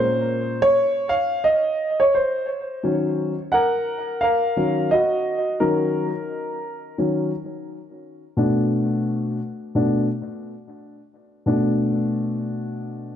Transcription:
Already playing: A#2 C#4 C5
0.62 C#5
1.09 F5
1.44 D#5
2.00 C#5
2.15 C5
2.83 D#3 F#3 C#4
3.52 A#4 F#5
4.21 A#4 F5
4.56 D#3 F#3 C#4
4.91 F#4 D#5
5.60 D#3 F#3 C#4 A#4
6.98 D#3 F#3 C#4
8.37 B2 A3 D4
9.75 B2 A3 D4
11.46 B2 A3 D4

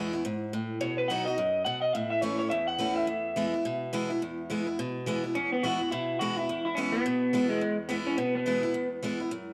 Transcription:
Already playing: E2 E3 G#3 B3
0.00 E4
0.13 B3 E4
0.25 G#2
0.53 A2
0.81 B2 C#5
0.98 B4
1.08 F#3 B3 D#4 F#4 F#5
1.25 F#4 D#5
1.29 D#4
1.38 F#2
1.65 B2 F#5
1.81 D#5
1.93 A2 E5
2.10 E5
2.21 E3 A3 C#4 E4 C#5
2.39 C#4 E4 C#5
2.50 E2 E5
2.67 F#5
2.79 E3 A3 C#4 E4
2.96 E5
3.07 E2
3.36 E3 G#3 B3 E4
3.54 B3 E4
3.65 B2
3.93 E3 G#3 B3 E4
4.10 B3 E4
4.22 E2
4.50 E3 G#3 B3 E4
4.67 B3 E4
4.79 B2
5.06 E3 G#3 B3 E4
5.24 B3 E4
5.35 E2 C#4
5.52 B3
5.63 E3 G#3 B3 E4 F#4
5.81 B3 E4
5.92 B2 E4
6.19 E3 G#3 B3 E4 F#4
6.37 B3 E4
6.49 E2
6.65 E4
6.75 E3 G#3 B3 C#4 E4
6.92 B3 E4
7.06 B2
7.33 E3 G#3 B3 E4
7.49 G#3
7.61 E2
7.89 E3 G#3 B3 E4
8.07 C#4
8.17 B2 B3
8.35 B3
8.46 E3 G#3 B3 E4
8.63 B3 E4
8.74 E2
9.03 E3 G#3 B3 E4
9.20 B3 E4
9.31 F#2

